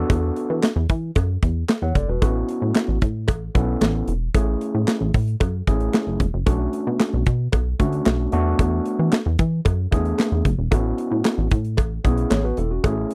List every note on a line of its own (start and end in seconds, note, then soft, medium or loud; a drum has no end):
0.00 0.68 B3 medium
0.00 0.68 D4 medium
0.00 0.68 F#4 medium
0.00 0.68 A4 loud
0.10 0.31 E2 loud
0.10 kick loud
0.10 closed hi-hat medium
0.10 cowbell medium
0.36 closed hi-hat medium
0.50 0.60 E3 medium
0.63 snare loud
0.63 clap medium
0.63 closed hi-hat medium
0.63 cowbell medium
0.76 0.87 E2 loud
0.89 1.11 E3 loud
0.89 kick medium
0.89 closed hi-hat medium
1.15 1.38 F#2 loud
1.15 kick loud
1.15 closed hi-hat medium
1.15 cowbell medium
1.42 1.64 E2 medium
1.42 kick loud
1.42 closed hi-hat medium
1.68 snare loud
1.68 clap medium
1.68 closed hi-hat medium
1.68 cowbell medium
1.82 1.93 E2 loud
1.82 1.95 C#5 medium
1.82 1.95 F#5 medium
1.95 2.06 F#1 medium
1.95 2.08 A4 medium
1.95 2.08 D5 medium
1.95 kick medium
1.95 closed hi-hat medium
2.08 2.19 E1 medium
2.08 2.21 F#4 medium
2.08 2.34 B4 medium
2.22 2.44 A1 loud
2.22 2.97 B3 medium
2.22 2.97 C#4 medium
2.22 2.97 E4 medium
2.22 2.98 F#4 medium
2.22 kick loud
2.22 closed hi-hat medium
2.22 cowbell medium
2.49 closed hi-hat medium
2.62 2.73 A2 loud
2.75 snare medium
2.75 clap medium
2.75 closed hi-hat medium
2.75 cowbell medium
2.88 2.99 A1 medium
3.01 3.30 A2 loud
3.01 kick medium
3.01 closed hi-hat medium
3.28 3.50 A1 medium
3.28 kick loud
3.28 closed hi-hat medium
3.28 cowbell medium
3.55 3.77 B1 medium
3.55 4.11 B3 medium
3.55 4.11 C#4 medium
3.55 4.11 E4 medium
3.55 4.12 A4 medium
3.55 kick loud
3.55 closed hi-hat medium
3.81 4.03 A1 medium
3.81 snare loud
3.81 clap medium
3.81 closed hi-hat medium
3.81 cowbell medium
4.08 4.29 E1 loud
4.08 closed hi-hat medium
4.34 4.56 A1 loud
4.34 5.10 A3 medium
4.34 5.10 C#4 medium
4.34 5.10 E4 medium
4.34 5.10 G#4 medium
4.34 kick loud
4.34 closed hi-hat medium
4.34 cowbell medium
4.61 closed hi-hat medium
4.75 4.85 A2 loud
4.87 snare medium
4.87 clap medium
4.87 closed hi-hat loud
4.87 cowbell medium
5.01 5.12 A1 medium
5.14 5.36 A2 loud
5.14 kick loud
5.14 open hi-hat medium
5.28 closed hi-hat soft
5.40 5.62 F#2 medium
5.40 kick loud
5.40 closed hi-hat medium
5.40 cowbell medium
5.67 5.89 A1 loud
5.67 6.24 A3 medium
5.67 6.24 C#4 medium
5.67 6.24 E4 medium
5.67 6.24 G#4 medium
5.67 kick medium
5.67 closed hi-hat medium
5.80 closed hi-hat soft
5.93 snare loud
5.93 clap medium
5.93 closed hi-hat medium
5.93 cowbell medium
6.07 6.18 F#1 medium
6.20 6.31 E1 medium
6.20 kick medium
6.20 closed hi-hat medium
6.34 6.44 F#1 medium
6.46 6.68 B1 loud
6.46 7.22 A3 medium
6.46 7.22 C#4 medium
6.46 7.22 D4 medium
6.46 7.22 F#4 medium
6.46 kick loud
6.46 closed hi-hat medium
6.46 cowbell medium
6.73 closed hi-hat medium
6.87 6.98 B2 loud
7.00 snare loud
7.00 clap medium
7.00 closed hi-hat medium
7.00 cowbell medium
7.14 7.24 B1 loud
7.26 7.48 B2 loud
7.26 kick medium
7.26 closed hi-hat medium
7.52 7.75 B1 loud
7.52 kick loud
7.52 closed hi-hat medium
7.52 cowbell medium
7.79 8.01 D2 medium
7.79 8.31 A3 medium
7.79 8.33 C#4 medium
7.79 8.32 D4 medium
7.79 8.32 F#4 medium
7.79 kick medium
7.79 closed hi-hat medium
7.92 closed hi-hat soft
8.05 8.28 B1 loud
8.05 snare loud
8.05 clap medium
8.05 closed hi-hat medium
8.05 cowbell medium
8.32 8.54 E2 loud
8.32 9.17 A3 medium
8.32 9.18 B3 medium
8.32 9.18 D4 medium
8.32 9.18 F#4 loud
8.32 closed hi-hat medium
8.59 8.81 E2 loud
8.59 kick loud
8.59 closed hi-hat loud
8.59 cowbell medium
8.85 closed hi-hat medium
8.99 9.10 E3 medium
9.12 snare loud
9.12 clap medium
9.12 closed hi-hat medium
9.12 cowbell medium
9.26 9.37 E2 loud
9.39 9.61 E3 loud
9.39 kick loud
9.39 closed hi-hat medium
9.65 9.87 F#2 loud
9.65 kick loud
9.65 closed hi-hat medium
9.65 cowbell medium
9.92 10.14 E2 medium
9.92 10.48 A3 medium
9.92 10.48 B3 medium
9.92 10.49 D4 medium
9.92 10.49 G#4 loud
9.92 kick loud
9.92 closed hi-hat medium
10.05 closed hi-hat soft
10.18 snare loud
10.18 clap medium
10.18 closed hi-hat medium
10.18 cowbell medium
10.32 10.43 E2 medium
10.45 10.56 F#1 loud
10.45 kick medium
10.45 closed hi-hat medium
10.58 10.69 E1 medium
10.71 10.93 A1 loud
10.71 11.47 B3 medium
10.71 11.47 C#4 medium
10.71 11.47 E4 medium
10.71 11.47 F#4 medium
10.71 kick loud
10.71 closed hi-hat loud
10.71 cowbell medium
10.98 closed hi-hat medium
11.11 11.22 A2 loud
11.25 snare medium
11.25 clap medium
11.25 closed hi-hat loud
11.25 cowbell medium
11.38 11.49 A1 loud
11.51 11.80 A2 loud
11.51 kick loud
11.51 closed hi-hat medium
11.65 closed hi-hat soft
11.77 12.00 A1 loud
11.77 kick loud
11.77 closed hi-hat medium
11.77 cowbell medium
12.04 12.26 B1 loud
12.04 12.61 B3 medium
12.04 12.31 C#4 medium
12.04 12.31 E4 medium
12.04 12.30 G#4 medium
12.04 kick medium
12.04 closed hi-hat medium
12.18 closed hi-hat soft
12.30 12.53 A1 loud
12.30 12.44 G#4 medium
12.30 12.44 C#5 medium
12.30 snare loud
12.30 clap medium
12.30 closed hi-hat medium
12.30 cowbell medium
12.44 12.57 F#4 medium
12.44 12.57 B4 medium
12.57 12.79 E1 medium
12.57 12.70 E4 medium
12.57 12.70 A4 medium
12.57 closed hi-hat medium
12.71 12.83 C#4 soft
12.71 12.96 F#4 medium
12.84 13.06 A1 medium
12.84 13.14 A3 medium
12.84 13.14 C#4 medium
12.84 13.14 E4 medium
12.84 13.14 G#4 medium
12.84 kick loud
12.84 closed hi-hat medium
12.84 cowbell medium
13.11 closed hi-hat medium